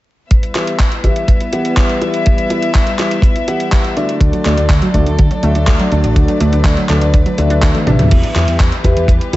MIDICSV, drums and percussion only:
0, 0, Header, 1, 2, 480
1, 0, Start_track
1, 0, Key_signature, 1, "minor"
1, 0, Tempo, 487805
1, 303, Time_signature, 4, 2, 24, 8
1, 9215, End_track
2, 0, Start_track
2, 0, Title_t, "Drums"
2, 303, Note_on_c, 9, 42, 90
2, 304, Note_on_c, 9, 36, 111
2, 401, Note_off_c, 9, 42, 0
2, 403, Note_off_c, 9, 36, 0
2, 423, Note_on_c, 9, 42, 39
2, 522, Note_off_c, 9, 42, 0
2, 543, Note_on_c, 9, 39, 56
2, 543, Note_on_c, 9, 42, 63
2, 641, Note_off_c, 9, 39, 0
2, 641, Note_off_c, 9, 42, 0
2, 663, Note_on_c, 9, 42, 39
2, 761, Note_off_c, 9, 42, 0
2, 782, Note_on_c, 9, 36, 103
2, 783, Note_on_c, 9, 39, 107
2, 783, Note_on_c, 9, 42, 86
2, 880, Note_off_c, 9, 36, 0
2, 881, Note_off_c, 9, 39, 0
2, 881, Note_off_c, 9, 42, 0
2, 903, Note_on_c, 9, 42, 40
2, 1002, Note_off_c, 9, 42, 0
2, 1021, Note_on_c, 9, 36, 60
2, 1023, Note_on_c, 9, 42, 66
2, 1120, Note_off_c, 9, 36, 0
2, 1121, Note_off_c, 9, 42, 0
2, 1142, Note_on_c, 9, 42, 40
2, 1240, Note_off_c, 9, 42, 0
2, 1261, Note_on_c, 9, 36, 101
2, 1262, Note_on_c, 9, 42, 90
2, 1359, Note_off_c, 9, 36, 0
2, 1360, Note_off_c, 9, 42, 0
2, 1382, Note_on_c, 9, 42, 38
2, 1481, Note_off_c, 9, 42, 0
2, 1502, Note_on_c, 9, 42, 62
2, 1600, Note_off_c, 9, 42, 0
2, 1623, Note_on_c, 9, 42, 39
2, 1721, Note_off_c, 9, 42, 0
2, 1740, Note_on_c, 9, 36, 112
2, 1742, Note_on_c, 9, 39, 110
2, 1742, Note_on_c, 9, 42, 89
2, 1838, Note_off_c, 9, 36, 0
2, 1841, Note_off_c, 9, 39, 0
2, 1841, Note_off_c, 9, 42, 0
2, 1863, Note_on_c, 9, 42, 38
2, 1962, Note_off_c, 9, 42, 0
2, 1983, Note_on_c, 9, 42, 39
2, 2082, Note_off_c, 9, 42, 0
2, 2103, Note_on_c, 9, 42, 35
2, 2201, Note_off_c, 9, 42, 0
2, 2222, Note_on_c, 9, 42, 86
2, 2230, Note_on_c, 9, 36, 110
2, 2321, Note_off_c, 9, 42, 0
2, 2328, Note_off_c, 9, 36, 0
2, 2343, Note_on_c, 9, 42, 38
2, 2442, Note_off_c, 9, 42, 0
2, 2463, Note_on_c, 9, 42, 63
2, 2561, Note_off_c, 9, 42, 0
2, 2583, Note_on_c, 9, 42, 39
2, 2681, Note_off_c, 9, 42, 0
2, 2703, Note_on_c, 9, 39, 110
2, 2703, Note_on_c, 9, 42, 88
2, 2704, Note_on_c, 9, 36, 103
2, 2802, Note_off_c, 9, 39, 0
2, 2802, Note_off_c, 9, 42, 0
2, 2803, Note_off_c, 9, 36, 0
2, 2823, Note_on_c, 9, 42, 40
2, 2921, Note_off_c, 9, 42, 0
2, 2943, Note_on_c, 9, 39, 64
2, 2943, Note_on_c, 9, 42, 65
2, 3041, Note_off_c, 9, 39, 0
2, 3041, Note_off_c, 9, 42, 0
2, 3063, Note_on_c, 9, 42, 38
2, 3161, Note_off_c, 9, 42, 0
2, 3171, Note_on_c, 9, 36, 124
2, 3183, Note_on_c, 9, 42, 85
2, 3269, Note_off_c, 9, 36, 0
2, 3281, Note_off_c, 9, 42, 0
2, 3303, Note_on_c, 9, 42, 37
2, 3401, Note_off_c, 9, 42, 0
2, 3422, Note_on_c, 9, 42, 61
2, 3521, Note_off_c, 9, 42, 0
2, 3543, Note_on_c, 9, 42, 37
2, 3641, Note_off_c, 9, 42, 0
2, 3663, Note_on_c, 9, 39, 113
2, 3663, Note_on_c, 9, 42, 88
2, 3664, Note_on_c, 9, 36, 115
2, 3761, Note_off_c, 9, 39, 0
2, 3761, Note_off_c, 9, 42, 0
2, 3762, Note_off_c, 9, 36, 0
2, 3783, Note_on_c, 9, 42, 38
2, 3881, Note_off_c, 9, 42, 0
2, 3903, Note_on_c, 9, 42, 37
2, 4002, Note_off_c, 9, 42, 0
2, 4023, Note_on_c, 9, 42, 35
2, 4122, Note_off_c, 9, 42, 0
2, 4138, Note_on_c, 9, 36, 111
2, 4142, Note_on_c, 9, 42, 88
2, 4237, Note_off_c, 9, 36, 0
2, 4241, Note_off_c, 9, 42, 0
2, 4262, Note_on_c, 9, 42, 38
2, 4360, Note_off_c, 9, 42, 0
2, 4382, Note_on_c, 9, 39, 62
2, 4382, Note_on_c, 9, 42, 60
2, 4481, Note_off_c, 9, 39, 0
2, 4481, Note_off_c, 9, 42, 0
2, 4502, Note_on_c, 9, 42, 37
2, 4601, Note_off_c, 9, 42, 0
2, 4619, Note_on_c, 9, 36, 114
2, 4623, Note_on_c, 9, 39, 115
2, 4623, Note_on_c, 9, 42, 86
2, 4718, Note_off_c, 9, 36, 0
2, 4721, Note_off_c, 9, 39, 0
2, 4721, Note_off_c, 9, 42, 0
2, 4743, Note_on_c, 9, 42, 37
2, 4841, Note_off_c, 9, 42, 0
2, 4861, Note_on_c, 9, 36, 57
2, 4863, Note_on_c, 9, 42, 65
2, 4959, Note_off_c, 9, 36, 0
2, 4962, Note_off_c, 9, 42, 0
2, 4984, Note_on_c, 9, 42, 37
2, 5082, Note_off_c, 9, 42, 0
2, 5103, Note_on_c, 9, 42, 85
2, 5107, Note_on_c, 9, 36, 126
2, 5201, Note_off_c, 9, 42, 0
2, 5206, Note_off_c, 9, 36, 0
2, 5223, Note_on_c, 9, 42, 36
2, 5321, Note_off_c, 9, 42, 0
2, 5342, Note_on_c, 9, 42, 60
2, 5440, Note_off_c, 9, 42, 0
2, 5462, Note_on_c, 9, 42, 37
2, 5560, Note_off_c, 9, 42, 0
2, 5582, Note_on_c, 9, 39, 117
2, 5582, Note_on_c, 9, 42, 84
2, 5585, Note_on_c, 9, 36, 124
2, 5681, Note_off_c, 9, 39, 0
2, 5681, Note_off_c, 9, 42, 0
2, 5683, Note_off_c, 9, 36, 0
2, 5702, Note_on_c, 9, 42, 36
2, 5801, Note_off_c, 9, 42, 0
2, 5822, Note_on_c, 9, 42, 37
2, 5920, Note_off_c, 9, 42, 0
2, 5942, Note_on_c, 9, 42, 33
2, 6041, Note_off_c, 9, 42, 0
2, 6062, Note_on_c, 9, 36, 105
2, 6063, Note_on_c, 9, 42, 83
2, 6161, Note_off_c, 9, 36, 0
2, 6161, Note_off_c, 9, 42, 0
2, 6183, Note_on_c, 9, 42, 37
2, 6281, Note_off_c, 9, 42, 0
2, 6302, Note_on_c, 9, 42, 61
2, 6401, Note_off_c, 9, 42, 0
2, 6422, Note_on_c, 9, 42, 37
2, 6521, Note_off_c, 9, 42, 0
2, 6537, Note_on_c, 9, 36, 111
2, 6542, Note_on_c, 9, 39, 119
2, 6542, Note_on_c, 9, 42, 82
2, 6635, Note_off_c, 9, 36, 0
2, 6640, Note_off_c, 9, 39, 0
2, 6640, Note_off_c, 9, 42, 0
2, 6662, Note_on_c, 9, 42, 36
2, 6760, Note_off_c, 9, 42, 0
2, 6782, Note_on_c, 9, 39, 64
2, 6782, Note_on_c, 9, 42, 62
2, 6880, Note_off_c, 9, 39, 0
2, 6880, Note_off_c, 9, 42, 0
2, 6902, Note_on_c, 9, 42, 38
2, 7001, Note_off_c, 9, 42, 0
2, 7022, Note_on_c, 9, 42, 83
2, 7023, Note_on_c, 9, 36, 108
2, 7121, Note_off_c, 9, 42, 0
2, 7122, Note_off_c, 9, 36, 0
2, 7143, Note_on_c, 9, 42, 35
2, 7241, Note_off_c, 9, 42, 0
2, 7262, Note_on_c, 9, 42, 59
2, 7361, Note_off_c, 9, 42, 0
2, 7382, Note_on_c, 9, 42, 36
2, 7481, Note_off_c, 9, 42, 0
2, 7502, Note_on_c, 9, 39, 121
2, 7502, Note_on_c, 9, 42, 83
2, 7504, Note_on_c, 9, 36, 108
2, 7601, Note_off_c, 9, 39, 0
2, 7601, Note_off_c, 9, 42, 0
2, 7603, Note_off_c, 9, 36, 0
2, 7623, Note_on_c, 9, 42, 36
2, 7623, Note_on_c, 9, 48, 50
2, 7721, Note_off_c, 9, 42, 0
2, 7721, Note_off_c, 9, 48, 0
2, 7743, Note_on_c, 9, 42, 36
2, 7743, Note_on_c, 9, 47, 77
2, 7842, Note_off_c, 9, 42, 0
2, 7842, Note_off_c, 9, 47, 0
2, 7864, Note_on_c, 9, 42, 33
2, 7864, Note_on_c, 9, 45, 76
2, 7962, Note_off_c, 9, 42, 0
2, 7962, Note_off_c, 9, 45, 0
2, 7983, Note_on_c, 9, 42, 92
2, 7983, Note_on_c, 9, 49, 89
2, 7989, Note_on_c, 9, 36, 109
2, 8082, Note_off_c, 9, 42, 0
2, 8082, Note_off_c, 9, 49, 0
2, 8087, Note_off_c, 9, 36, 0
2, 8103, Note_on_c, 9, 42, 40
2, 8202, Note_off_c, 9, 42, 0
2, 8223, Note_on_c, 9, 39, 60
2, 8223, Note_on_c, 9, 42, 66
2, 8322, Note_off_c, 9, 39, 0
2, 8322, Note_off_c, 9, 42, 0
2, 8343, Note_on_c, 9, 42, 41
2, 8441, Note_off_c, 9, 42, 0
2, 8460, Note_on_c, 9, 36, 111
2, 8462, Note_on_c, 9, 39, 113
2, 8462, Note_on_c, 9, 42, 90
2, 8559, Note_off_c, 9, 36, 0
2, 8561, Note_off_c, 9, 39, 0
2, 8561, Note_off_c, 9, 42, 0
2, 8583, Note_on_c, 9, 42, 41
2, 8681, Note_off_c, 9, 42, 0
2, 8700, Note_on_c, 9, 36, 57
2, 8703, Note_on_c, 9, 42, 68
2, 8798, Note_off_c, 9, 36, 0
2, 8801, Note_off_c, 9, 42, 0
2, 8823, Note_on_c, 9, 42, 42
2, 8921, Note_off_c, 9, 42, 0
2, 8936, Note_on_c, 9, 36, 109
2, 8943, Note_on_c, 9, 42, 93
2, 9034, Note_off_c, 9, 36, 0
2, 9042, Note_off_c, 9, 42, 0
2, 9064, Note_on_c, 9, 42, 38
2, 9162, Note_off_c, 9, 42, 0
2, 9183, Note_on_c, 9, 42, 64
2, 9215, Note_off_c, 9, 42, 0
2, 9215, End_track
0, 0, End_of_file